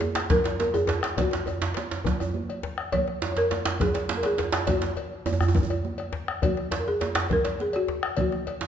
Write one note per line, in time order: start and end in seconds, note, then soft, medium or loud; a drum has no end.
0.00 0.33 G#4 medium
0.00 cowbell soft
0.00 djembe slap medium
0.00 djembe tone medium
0.00 high conga medium
0.15 bombo rim medium
0.15 djembe slap medium
0.30 0.58 A#4 medium
0.30 bombo low loud
0.30 djembe slap medium
0.30 djembe slap soft
0.30 djembe tone medium
0.30 high conga soft
0.30 djembe bass medium
0.30 low conga medium
0.44 bombo rim soft
0.44 cowbell soft
0.44 djembe slap medium
0.44 high conga soft
0.60 0.74 A#4 medium
0.60 djembe slap medium
0.60 high conga medium
0.74 1.19 G#4 loud
0.74 bombo rim soft
0.74 cowbell soft
0.74 djembe tone medium
0.87 djembe slap medium
0.87 djembe tone medium
1.02 bombo rim medium
1.02 djembe slap soft
1.04 djembe slap medium
1.17 2.03 F#4 medium
1.17 bombo rim soft
1.17 bombo low medium
1.17 cowbell medium
1.17 djembe slap medium
1.17 high conga medium
1.17 djembe bass medium
1.17 low conga medium
1.31 bombo rim soft
1.31 djembe slap medium
1.33 djembe slap medium
1.46 bombo rim soft
1.46 cowbell soft
1.46 djembe slap soft
1.46 djembe tone medium
1.62 djembe slap medium
1.74 djembe slap medium
1.77 cowbell soft
1.77 djembe slap medium
1.77 high conga medium
1.91 djembe slap medium
2.05 bombo low medium
2.05 djembe slap soft
2.05 djembe tone medium
2.05 high conga soft
2.05 djembe bass medium
2.05 low conga medium
2.07 djembe slap medium
2.20 bombo rim soft
2.20 cowbell soft
2.20 high conga soft
2.20 djembe tone medium
2.34 high conga medium
2.49 bombo rim soft
2.49 cowbell soft
2.63 djembe slap medium
2.63 djembe tone medium
2.78 bombo rim medium
2.78 djembe slap soft
2.92 3.20 C#5 loud
2.92 bombo rim soft
2.92 bombo low medium
2.92 cowbell medium
2.92 high conga medium
2.92 djembe bass medium
2.92 low conga medium
3.08 bombo rim soft
3.08 djembe slap soft
3.22 bombo rim soft
3.22 cowbell soft
3.22 djembe slap medium
3.22 djembe slap soft
3.22 djembe tone medium
3.32 3.38 C#5 medium
3.37 3.78 A#4 medium
3.37 djembe slap medium
3.51 cowbell soft
3.51 djembe slap medium
3.51 high conga medium
3.65 bombo rim medium
3.65 djembe slap loud
3.80 4.08 G#4 medium
3.80 bombo low medium
3.80 djembe slap soft
3.80 djembe slap medium
3.80 djembe tone medium
3.80 high conga soft
3.80 djembe bass medium
3.80 low conga medium
3.94 bombo rim soft
3.94 cowbell soft
3.94 djembe slap medium
3.94 high conga soft
4.09 djembe slap medium
4.09 high conga medium
4.17 4.24 A#4 medium
4.23 4.70 G#4 medium
4.23 bombo rim soft
4.23 cowbell medium
4.23 djembe slap medium
4.38 djembe slap medium
4.38 djembe tone medium
4.52 bombo rim medium
4.52 djembe slap loud
4.67 5.23 F#4 medium
4.67 bombo rim soft
4.67 bombo low medium
4.67 cowbell medium
4.67 djembe slap medium
4.67 djembe slap soft
4.67 high conga medium
4.67 low conga medium
4.67 djembe bass medium
4.82 bombo rim soft
4.82 djembe slap medium
4.82 high conga soft
4.96 cowbell medium
4.96 djembe tone medium
5.26 cowbell soft
5.26 djembe slap medium
5.26 djembe tone medium
5.26 high conga medium
5.33 djembe tone medium
5.41 bombo rim medium
5.41 djembe bass medium
5.48 djembe tone medium
5.55 bombo low medium
5.55 djembe tone medium
5.55 low conga medium
5.55 djembe bass medium
5.63 djembe bass medium
5.70 bombo rim soft
5.70 cowbell soft
5.70 djembe slap medium
5.70 high conga soft
5.85 high conga medium
5.98 bombo rim soft
5.98 cowbell soft
5.98 high conga soft
6.13 djembe slap medium
6.13 djembe tone medium
6.28 bombo rim medium
6.28 djembe slap soft
6.42 6.81 F#4 medium
6.42 bombo rim soft
6.42 bombo low medium
6.42 cowbell medium
6.42 high conga medium
6.42 djembe bass medium
6.42 low conga medium
6.57 bombo rim soft
6.57 djembe slap medium
6.71 bombo rim soft
6.71 cowbell medium
6.71 djembe slap soft
6.71 djembe slap medium
6.71 djembe tone medium
6.80 6.87 A#4 medium
6.88 7.28 G#4 medium
7.01 cowbell soft
7.01 djembe slap medium
7.01 high conga medium
7.15 bombo rim medium
7.15 djembe slap loud
7.30 7.61 A#4 medium
7.30 bombo low medium
7.30 djembe slap soft
7.30 djembe tone medium
7.30 high conga soft
7.30 djembe bass medium
7.30 low conga medium
7.44 bombo rim soft
7.44 cowbell medium
7.44 djembe slap soft
7.44 djembe slap medium
7.44 high conga soft
7.60 7.75 G#4 medium
7.60 high conga medium
7.73 8.20 F#4 medium
7.73 bombo rim soft
7.73 cowbell medium
7.88 djembe slap medium
7.88 djembe tone medium
8.03 bombo rim medium
8.03 djembe slap soft
8.17 bombo rim soft
8.17 bombo low medium
8.17 cowbell medium
8.17 high conga medium
8.17 djembe bass medium
8.17 low conga medium
8.21 8.67 F#4 medium
8.32 bombo rim soft
8.32 djembe slap soft
8.47 bombo rim soft
8.47 cowbell medium
8.47 djembe slap soft
8.47 djembe tone medium
8.61 djembe slap medium